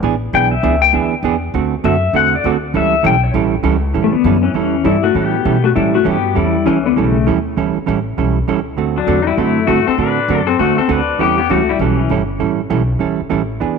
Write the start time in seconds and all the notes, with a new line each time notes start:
0.03 A1 E3 B3 D4 G#4
0.33 B1 E3 B3 D4 G#4 G5
0.51 E5
0.63 C#2 E3 B3 D4 G#4
0.82 G5
0.93 D2 E3 B3 D4 G#4 E5
1.23 E2 E3 B3 D4 G#4
1.54 D2 D3 A3 C4 F#4 A4
1.84 F#2 D3 A3 C4 F#4 A4 E5
2.13 E2 D3 A3 C4 F#4 A4 F#5
2.35 D5
2.44 D2 D3 A3 C4 F#4 A4
2.74 C#2 E3 G3 C#4 E4 A4 E5
3.03 B1 E3 G3 C#4 E4 A4 G5
3.24 C#5
3.34 A1 E3 G3 C#4 E4 A4
3.63 C#2 E3 G3 C#4 E4 A4
3.93 A2 E3 G3 C#4 E4 A4
4.04 A3
4.13 D3 B3, muted upright bass stroke
4.24 F#2 E3 G3 C#4 E4 A4
4.43 E3 C#4
4.54 E2 E3 G3 C#4 E4 A4
4.84 G2 E3 G3 C#4 E4 A4
5.04 A3 F#4
5.14 A2 E3 G3 B3 C#4 E4 G4 A4
5.45 B2 E3 G3 C#4 E4 A4
5.64 A3 F#4
5.75 A2 E3 G3 C#4 E4 A4
5.95 A3 F#4
6.04 G2 E3 G3 B3 C#4 E4 G4 A4
6.34 E2 E3 G3 C#4 E4 A4
6.65 C#2 E3 G3 C#4 E4 A4
6.86 D3 B3
6.96 B1 C#3 E3 G3 A3 C#4 E4 A4
7.26 D2 E3 G3 C#4 E4 A4
7.57 C#2 E3 G3 C#4 E4 A4
7.77 muted upright bass stroke
7.86 A1 E3 G3 C#4 E4 A4
8.17 B1 E3 G3 C#4 E4 A4
8.48 C#2 E3 G3 C#4 E4 A4
8.77 D2 D3 A3 C4 F#4 A4
8.98 F#3 D4
9.07 E2 D3 A3 C4 F#4 A4
9.22 D#4
9.27 G3 E4
9.37 F#2 D3 A3 C4 E4 F#4 A4
9.67 G2 D3 A3 C4 F#4 A4
9.87 C4 A4, muted upright bass stroke
9.97 A2 D3 A3 C4 D4 F#4 A4 B4
10.28 F#2 D3 A3 C4 F#4 A4
10.47 C4 A4
10.59 E2 D3 A3 C4 F#4 A4
10.78 C4 A4, muted upright bass stroke
10.88 D2 D3 A3 C4 D4 F#4 A4 B4
11.19 E2 E3 G3 B3 C#4 E4 G4 A4
11.38 B3 G4
11.49 C#2 E3 G3 A3 C#4 E4 F#4 A4
11.69 G3 E4
11.79 B1 E3 G3 C#4 E4 A4
12.09 G1 E3 G3 C#4 E4 A4
12.39 A1 E3 G3 C#4 E4 A4
12.70 B1 E3 G3 C#4 E4 A4
12.99 C#2 E3 G3 C#4 E4 A4
13.20 muted upright bass stroke
13.30 A1 E3 G3 C#4 E4 A4
13.60 E2 E3 B3 D4 G#4